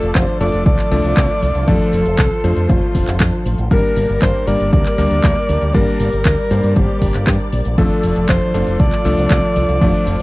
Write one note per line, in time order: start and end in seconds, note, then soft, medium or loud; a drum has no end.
0.00 0.12 F1 medium
0.00 0.38 F3 medium
0.00 3.67 F3 medium
0.00 0.38 A3 medium
0.00 0.38 D4 medium
0.00 3.67 F4 medium
0.00 0.17 A4 loud
0.00 0.38 A4 loud
0.00 3.67 A4 medium
0.00 1.64 D5 medium
0.00 closed hi-hat medium
0.00 cabasa soft
0.15 0.24 F1 loud
0.15 0.40 C5 loud
0.15 kick loud
0.15 clap loud
0.15 closed hi-hat medium
0.15 cabasa soft
0.28 closed hi-hat soft
0.40 0.50 F1 loud
0.40 0.88 F3 medium
0.40 0.88 A3 medium
0.40 0.88 D4 medium
0.40 0.88 A4 loud
0.40 0.64 D5 loud
0.40 open hi-hat loud
0.40 cabasa medium
0.53 0.62 F1 medium
0.53 closed hi-hat medium
0.53 cabasa soft
0.66 0.75 C2 loud
0.66 1.69 D5 loud
0.66 kick loud
0.66 closed hi-hat medium
0.66 cabasa soft
0.79 clap soft
0.79 closed hi-hat soft
0.91 1.01 C2 loud
0.91 1.65 F3 loud
0.91 1.65 A3 medium
0.91 1.65 D4 medium
0.91 1.65 A4 loud
0.91 open hi-hat loud
0.91 cabasa medium
1.04 1.13 C2 medium
1.04 closed hi-hat medium
1.04 cabasa soft
1.17 1.26 C2 loud
1.17 kick loud
1.17 clap loud
1.17 closed hi-hat medium
1.17 cabasa soft
1.30 closed hi-hat soft
1.42 1.51 C2 loud
1.42 open hi-hat loud
1.42 cabasa medium
1.55 1.64 C2 medium
1.55 closed hi-hat medium
1.55 cabasa soft
1.68 1.77 F1 loud
1.68 2.00 F3 medium
1.68 2.00 A3 medium
1.68 2.00 D4 medium
1.68 2.71 A4 loud
1.68 3.69 C5 medium
1.68 2.00 D5 loud
1.68 kick loud
1.68 closed hi-hat medium
1.68 cabasa soft
1.80 closed hi-hat soft
1.93 2.02 F1 medium
1.93 open hi-hat loud
1.93 cabasa medium
2.06 2.15 F1 medium
2.06 closed hi-hat medium
2.06 cabasa soft
2.19 2.28 C2 loud
2.19 kick loud
2.19 clap loud
2.19 closed hi-hat soft
2.19 cabasa soft
2.31 closed hi-hat soft
2.44 2.53 F2 loud
2.44 3.68 F3 medium
2.44 3.68 A3 medium
2.44 3.68 D4 medium
2.44 3.68 C5 medium
2.44 open hi-hat loud
2.44 cabasa medium
2.57 2.66 F2 medium
2.57 closed hi-hat soft
2.57 cabasa soft
2.69 2.79 F1 loud
2.69 3.46 F4 medium
2.69 kick loud
2.69 closed hi-hat medium
2.69 cabasa soft
2.82 closed hi-hat soft
2.95 3.04 F1 medium
2.95 kick medium
2.95 open hi-hat loud
2.95 cabasa medium
3.07 3.17 F1 medium
3.07 clap soft
3.07 closed hi-hat medium
3.07 cabasa soft
3.20 3.29 F2 loud
3.20 kick loud
3.20 clap loud
3.20 closed hi-hat medium
3.20 cabasa soft
3.33 closed hi-hat soft
3.46 3.55 A1 medium
3.46 open hi-hat loud
3.46 cabasa medium
3.58 3.68 A1 medium
3.58 closed hi-hat medium
3.58 cabasa soft
3.71 3.80 G1 loud
3.71 4.44 G3 medium
3.71 7.74 G3 medium
3.71 4.44 A#3 medium
3.71 4.44 D4 medium
3.71 7.74 G4 medium
3.71 4.44 A#4 loud
3.71 7.74 A#4 medium
3.71 4.19 A#4 loud
3.71 9.77 D5 medium
3.71 kick loud
3.71 closed hi-hat medium
3.71 cabasa soft
3.84 closed hi-hat soft
3.96 4.06 G1 medium
3.96 open hi-hat loud
3.96 cabasa medium
4.09 4.18 G1 medium
4.09 closed hi-hat medium
4.09 cabasa soft
4.22 4.31 G1 loud
4.22 4.49 C5 loud
4.22 kick loud
4.22 clap loud
4.22 closed hi-hat medium
4.22 cabasa soft
4.35 closed hi-hat soft
4.47 4.56 G1 loud
4.47 4.95 G3 medium
4.47 4.95 A#3 medium
4.47 4.95 D4 medium
4.47 4.95 A#4 medium
4.47 4.72 D5 loud
4.47 open hi-hat loud
4.47 cabasa medium
4.60 4.69 G1 medium
4.60 closed hi-hat medium
4.60 cabasa soft
4.73 4.82 D2 loud
4.73 5.76 D5 loud
4.73 kick loud
4.73 closed hi-hat medium
4.73 cabasa soft
4.86 clap soft
4.86 closed hi-hat soft
4.98 5.07 D2 loud
4.98 5.71 G3 loud
4.98 5.71 A#3 medium
4.98 5.71 D4 medium
4.98 5.71 A#4 loud
4.98 open hi-hat loud
4.98 cabasa medium
5.11 5.20 D2 medium
5.11 closed hi-hat medium
5.11 cabasa soft
5.24 5.33 D2 loud
5.24 kick loud
5.24 clap loud
5.24 closed hi-hat medium
5.24 cabasa soft
5.36 closed hi-hat soft
5.49 5.58 D2 medium
5.49 open hi-hat loud
5.49 cabasa medium
5.62 5.71 D2 medium
5.62 closed hi-hat medium
5.62 cabasa soft
5.74 5.84 G1 loud
5.74 6.07 G3 loud
5.74 6.07 A#3 medium
5.74 6.07 D4 medium
5.74 6.76 A#4 loud
5.74 6.07 D5 loud
5.74 kick loud
5.74 closed hi-hat medium
5.74 cabasa soft
5.87 closed hi-hat soft
6.00 6.09 G1 medium
6.00 open hi-hat loud
6.00 cabasa medium
6.13 6.22 G1 medium
6.13 closed hi-hat medium
6.13 cabasa soft
6.25 6.34 D2 loud
6.25 kick loud
6.25 clap loud
6.25 closed hi-hat medium
6.25 cabasa soft
6.38 closed hi-hat soft
6.51 6.60 G2 loud
6.51 7.75 G3 medium
6.51 7.75 A#3 medium
6.51 7.75 D4 medium
6.51 7.75 C5 medium
6.51 open hi-hat loud
6.51 cabasa medium
6.63 6.73 G2 medium
6.63 closed hi-hat medium
6.63 cabasa soft
6.76 6.85 G1 loud
6.76 7.48 G4 medium
6.76 kick loud
6.76 closed hi-hat medium
6.76 cabasa soft
6.89 closed hi-hat soft
7.02 7.11 G1 loud
7.02 kick medium
7.02 open hi-hat loud
7.02 cabasa medium
7.14 7.24 G1 medium
7.14 clap soft
7.14 closed hi-hat medium
7.14 cabasa soft
7.27 7.36 G2 loud
7.27 kick loud
7.27 clap loud
7.27 closed hi-hat medium
7.27 cabasa soft
7.40 closed hi-hat soft
7.52 7.62 A#1 medium
7.52 open hi-hat loud
7.52 cabasa medium
7.65 7.74 A#1 medium
7.65 closed hi-hat medium
7.65 cabasa soft
7.78 7.87 F1 loud
7.78 8.51 F3 medium
7.78 10.22 F3 medium
7.78 8.51 A3 medium
7.78 8.51 D4 medium
7.78 10.22 F4 medium
7.78 8.25 A4 loud
7.78 8.51 A4 loud
7.78 10.22 A4 medium
7.78 kick loud
7.78 closed hi-hat medium
7.78 cabasa soft
7.91 closed hi-hat soft
8.03 8.13 F1 medium
8.03 open hi-hat loud
8.03 cabasa medium
8.16 8.25 F1 medium
8.16 closed hi-hat medium
8.16 cabasa soft
8.29 8.38 F1 loud
8.29 8.81 C5 loud
8.29 kick loud
8.29 clap loud
8.29 closed hi-hat medium
8.29 cabasa soft
8.42 closed hi-hat soft
8.54 8.63 F1 medium
8.54 9.02 F3 medium
8.54 9.02 A3 medium
8.54 9.02 D4 medium
8.54 9.02 A4 medium
8.54 open hi-hat loud
8.54 cabasa medium
8.67 8.76 F1 medium
8.67 closed hi-hat medium
8.67 cabasa soft
8.80 8.89 C2 loud
8.80 10.22 D5 loud
8.80 kick loud
8.80 closed hi-hat medium
8.80 cabasa soft
8.92 clap soft
8.92 closed hi-hat soft
9.05 9.14 C2 medium
9.05 9.78 F3 loud
9.05 9.78 A3 medium
9.05 9.78 D4 medium
9.05 9.78 A4 loud
9.05 open hi-hat loud
9.05 cabasa medium
9.18 9.27 C2 medium
9.18 closed hi-hat medium
9.18 cabasa soft
9.30 9.40 C2 loud
9.30 kick loud
9.30 clap loud
9.30 closed hi-hat medium
9.30 cabasa soft
9.43 closed hi-hat soft
9.56 9.65 C2 medium
9.56 open hi-hat loud
9.56 cabasa medium
9.69 9.78 C2 medium
9.69 closed hi-hat medium
9.69 cabasa soft
9.81 9.90 F1 loud
9.81 10.13 F3 loud
9.81 10.13 A3 medium
9.81 10.13 D4 medium
9.81 10.22 C5 medium
9.81 10.13 D5 loud
9.81 kick loud
9.81 closed hi-hat medium
9.81 cabasa soft
9.94 closed hi-hat soft
10.07 10.16 F1 loud
10.07 open hi-hat loud
10.07 cabasa medium